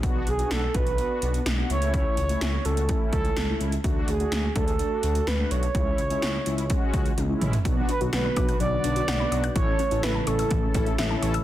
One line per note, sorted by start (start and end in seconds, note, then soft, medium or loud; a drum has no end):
0.03 0.20 B1 loud
0.03 0.29 B3 medium
0.03 0.29 D4 medium
0.03 0.29 F#4 loud
0.03 kick loud
0.03 closed hi-hat medium
0.27 0.44 B1 loud
0.27 0.50 G#4 medium
0.27 closed hi-hat medium
0.39 0.64 B3 medium
0.39 0.65 D4 medium
0.39 0.64 F#4 medium
0.39 closed hi-hat soft
0.51 0.68 B1 medium
0.51 0.76 A4 loud
0.51 snare loud
0.51 closed hi-hat medium
0.74 1.00 B1 loud
0.74 0.92 B3 medium
0.74 0.92 D4 medium
0.74 0.92 F#4 medium
0.74 1.46 B4 loud
0.74 kick loud
0.74 closed hi-hat medium
0.87 closed hi-hat medium
0.98 1.41 B3 medium
0.98 1.41 D4 medium
0.98 1.41 F#4 medium
0.98 closed hi-hat medium
1.22 1.39 B1 loud
1.22 closed hi-hat medium
1.34 closed hi-hat soft
1.46 1.63 B1 loud
1.46 snare loud
1.46 closed hi-hat medium
1.58 1.70 B3 medium
1.58 1.70 D4 medium
1.58 1.70 F#4 medium
1.70 2.03 C#2 medium
1.70 2.18 A3 medium
1.70 2.18 C#4 medium
1.70 2.18 E4 medium
1.70 1.92 C#5 loud
1.70 closed hi-hat medium
1.82 closed hi-hat medium
1.94 2.67 C#5 loud
1.94 kick loud
1.94 closed hi-hat medium
2.17 2.34 C#2 loud
2.17 closed hi-hat medium
2.29 2.55 A3 medium
2.29 2.55 C#4 medium
2.29 2.55 E4 medium
2.29 closed hi-hat soft
2.41 2.58 C#2 loud
2.41 snare loud
2.41 closed hi-hat medium
2.65 2.90 C#2 loud
2.65 2.82 A3 medium
2.65 2.82 C#4 medium
2.65 2.82 F#4 medium
2.65 3.12 A4 loud
2.65 closed hi-hat medium
2.77 closed hi-hat medium
2.89 3.31 A3 medium
2.89 3.31 C#4 medium
2.89 3.31 E4 medium
2.89 kick medium
2.89 closed hi-hat medium
3.13 3.29 C#2 medium
3.13 3.57 A4 medium
3.13 kick medium
3.13 closed hi-hat medium
3.25 closed hi-hat soft
3.37 3.53 C#2 loud
3.37 snare loud
3.37 closed hi-hat medium
3.49 3.74 A3 medium
3.49 3.74 C#4 medium
3.49 3.74 E4 medium
3.60 3.77 C#2 medium
3.60 closed hi-hat medium
3.72 closed hi-hat medium
3.84 4.01 D2 loud
3.84 4.10 A3 medium
3.84 4.10 D4 medium
3.84 4.10 F#4 loud
3.84 kick loud
3.84 closed hi-hat medium
4.08 4.25 D2 loud
4.08 4.53 G#4 medium
4.08 closed hi-hat medium
4.20 4.46 A3 medium
4.20 4.45 D4 medium
4.20 4.45 F#4 medium
4.20 closed hi-hat soft
4.32 4.48 D2 loud
4.32 snare loud
4.32 closed hi-hat medium
4.56 4.81 D2 medium
4.56 4.73 A3 medium
4.56 4.73 D4 medium
4.56 4.73 G#4 medium
4.56 5.29 A4 loud
4.56 kick loud
4.56 closed hi-hat medium
4.68 closed hi-hat medium
4.79 5.22 A3 medium
4.79 5.22 D4 medium
4.79 5.22 F#4 medium
4.79 closed hi-hat medium
5.03 5.20 D2 loud
5.03 closed hi-hat medium
5.15 closed hi-hat soft
5.27 5.44 D2 loud
5.27 5.53 B4 loud
5.27 snare loud
5.27 closed hi-hat medium
5.39 5.65 A3 medium
5.39 5.65 D4 medium
5.39 5.65 F#4 medium
5.51 5.68 B1 medium
5.51 7.42 C#5 loud
5.51 closed hi-hat medium
5.63 closed hi-hat medium
5.75 5.91 C#2 loud
5.75 6.00 G#3 medium
5.75 6.00 C#4 medium
5.75 6.00 E4 medium
5.75 kick loud
5.75 closed hi-hat medium
5.98 6.15 C#2 loud
5.98 closed hi-hat medium
6.10 6.36 G#3 medium
6.10 6.36 C#4 medium
6.10 6.36 E4 medium
6.10 closed hi-hat soft
6.22 6.39 C#2 loud
6.22 snare loud
6.22 closed hi-hat medium
6.46 6.71 C#2 loud
6.46 6.63 G#3 medium
6.46 6.63 C#4 medium
6.46 6.63 E4 medium
6.46 closed hi-hat medium
6.58 closed hi-hat medium
6.70 7.12 G#3 medium
6.70 7.12 C#4 medium
6.70 7.12 F#4 loud
6.70 kick medium
6.70 closed hi-hat medium
6.94 7.10 C#2 loud
6.94 kick medium
6.94 closed hi-hat medium
7.06 closed hi-hat soft
7.18 7.34 C#2 loud
7.18 closed hi-hat medium
7.18 high tom medium
7.29 7.55 G#3 medium
7.29 7.55 C#4 medium
7.29 7.55 E4 loud
7.41 7.58 A1 medium
7.41 closed hi-hat medium
7.41 mid tom medium
7.53 closed hi-hat medium
7.53 floor tom medium
7.65 7.82 B1 loud
7.65 9.54 D3 medium
7.65 9.54 F#3 medium
7.65 7.72 F#3 medium
7.65 9.54 B3 medium
7.65 7.91 B3 medium
7.65 7.91 D4 medium
7.65 9.54 F#4 medium
7.65 7.91 F#4 loud
7.65 kick loud
7.65 closed hi-hat medium
7.77 7.84 B3 medium
7.89 7.96 D4 medium
7.89 8.00 B4 medium
7.89 closed hi-hat medium
8.01 8.09 B1 medium
8.01 8.26 B3 medium
8.01 8.26 D4 medium
8.01 8.08 F#4 medium
8.01 8.26 F#4 medium
8.01 closed hi-hat soft
8.13 8.29 B1 loud
8.13 8.57 B4 loud
8.13 8.20 F#5 medium
8.13 snare loud
8.13 closed hi-hat medium
8.25 8.31 B5 medium
8.37 8.53 B1 loud
8.37 8.62 B3 medium
8.37 8.62 D4 medium
8.37 8.62 F#4 medium
8.37 8.43 D6 loud
8.37 kick loud
8.37 closed hi-hat medium
8.49 8.55 F#6 medium
8.49 closed hi-hat medium
8.60 8.77 B1 loud
8.60 8.67 F#3 medium
8.60 9.52 D5 loud
8.60 closed hi-hat medium
8.72 9.06 B3 medium
8.72 9.06 D4 medium
8.72 9.06 F#4 medium
8.84 9.01 B1 medium
8.84 8.91 D4 medium
8.84 closed hi-hat medium
8.96 9.03 F#4 medium
8.96 closed hi-hat soft
9.08 9.25 B1 loud
9.08 9.15 F#5 loud
9.08 snare loud
9.08 closed hi-hat medium
9.20 9.45 B3 medium
9.20 9.45 D4 medium
9.20 9.45 F#4 loud
9.20 9.27 B5 medium
9.32 9.49 B1 loud
9.32 9.39 D6 medium
9.32 closed hi-hat medium
9.44 9.50 F#6 loud
9.44 closed hi-hat medium
9.55 9.72 A1 loud
9.55 11.44 C#3 medium
9.55 9.62 E3 medium
9.55 11.44 E3 medium
9.55 11.44 A3 medium
9.55 9.81 C#4 medium
9.55 9.81 E4 medium
9.55 11.44 E4 medium
9.55 9.81 A4 medium
9.55 10.05 C#5 loud
9.55 kick loud
9.55 closed hi-hat medium
9.68 9.74 A3 medium
9.79 9.86 C#4 medium
9.79 closed hi-hat medium
9.91 10.00 A1 medium
9.91 10.17 C#4 medium
9.91 9.98 E4 medium
9.91 10.17 E4 medium
9.91 10.17 A4 medium
9.91 closed hi-hat soft
10.03 10.20 A1 loud
10.03 10.26 B4 loud
10.03 10.10 E5 medium
10.03 snare loud
10.03 closed hi-hat medium
10.15 10.22 A5 medium
10.27 10.44 A1 loud
10.27 10.53 C#4 medium
10.27 10.53 E4 medium
10.27 11.18 A4 medium
10.27 10.53 A4 medium
10.27 10.34 C#6 loud
10.27 closed hi-hat medium
10.39 10.46 E6 medium
10.39 closed hi-hat medium
10.51 10.68 A1 loud
10.51 10.58 E3 medium
10.51 kick medium
10.51 closed hi-hat medium
10.63 10.97 C#4 medium
10.63 10.97 E4 medium
10.63 10.97 A4 medium
10.74 10.91 A1 loud
10.74 10.81 C#4 medium
10.74 kick medium
10.74 closed hi-hat medium
10.86 10.93 E4 medium
10.86 closed hi-hat soft
10.98 11.15 A1 medium
10.98 11.05 E5 loud
10.98 snare loud
10.98 closed hi-hat medium
11.11 11.36 C#4 medium
11.11 11.36 E4 medium
11.11 11.36 A4 loud
11.11 11.17 A5 medium
11.22 11.39 A1 loud
11.22 11.29 C#6 medium
11.22 closed hi-hat medium
11.34 11.41 E6 loud
11.34 closed hi-hat medium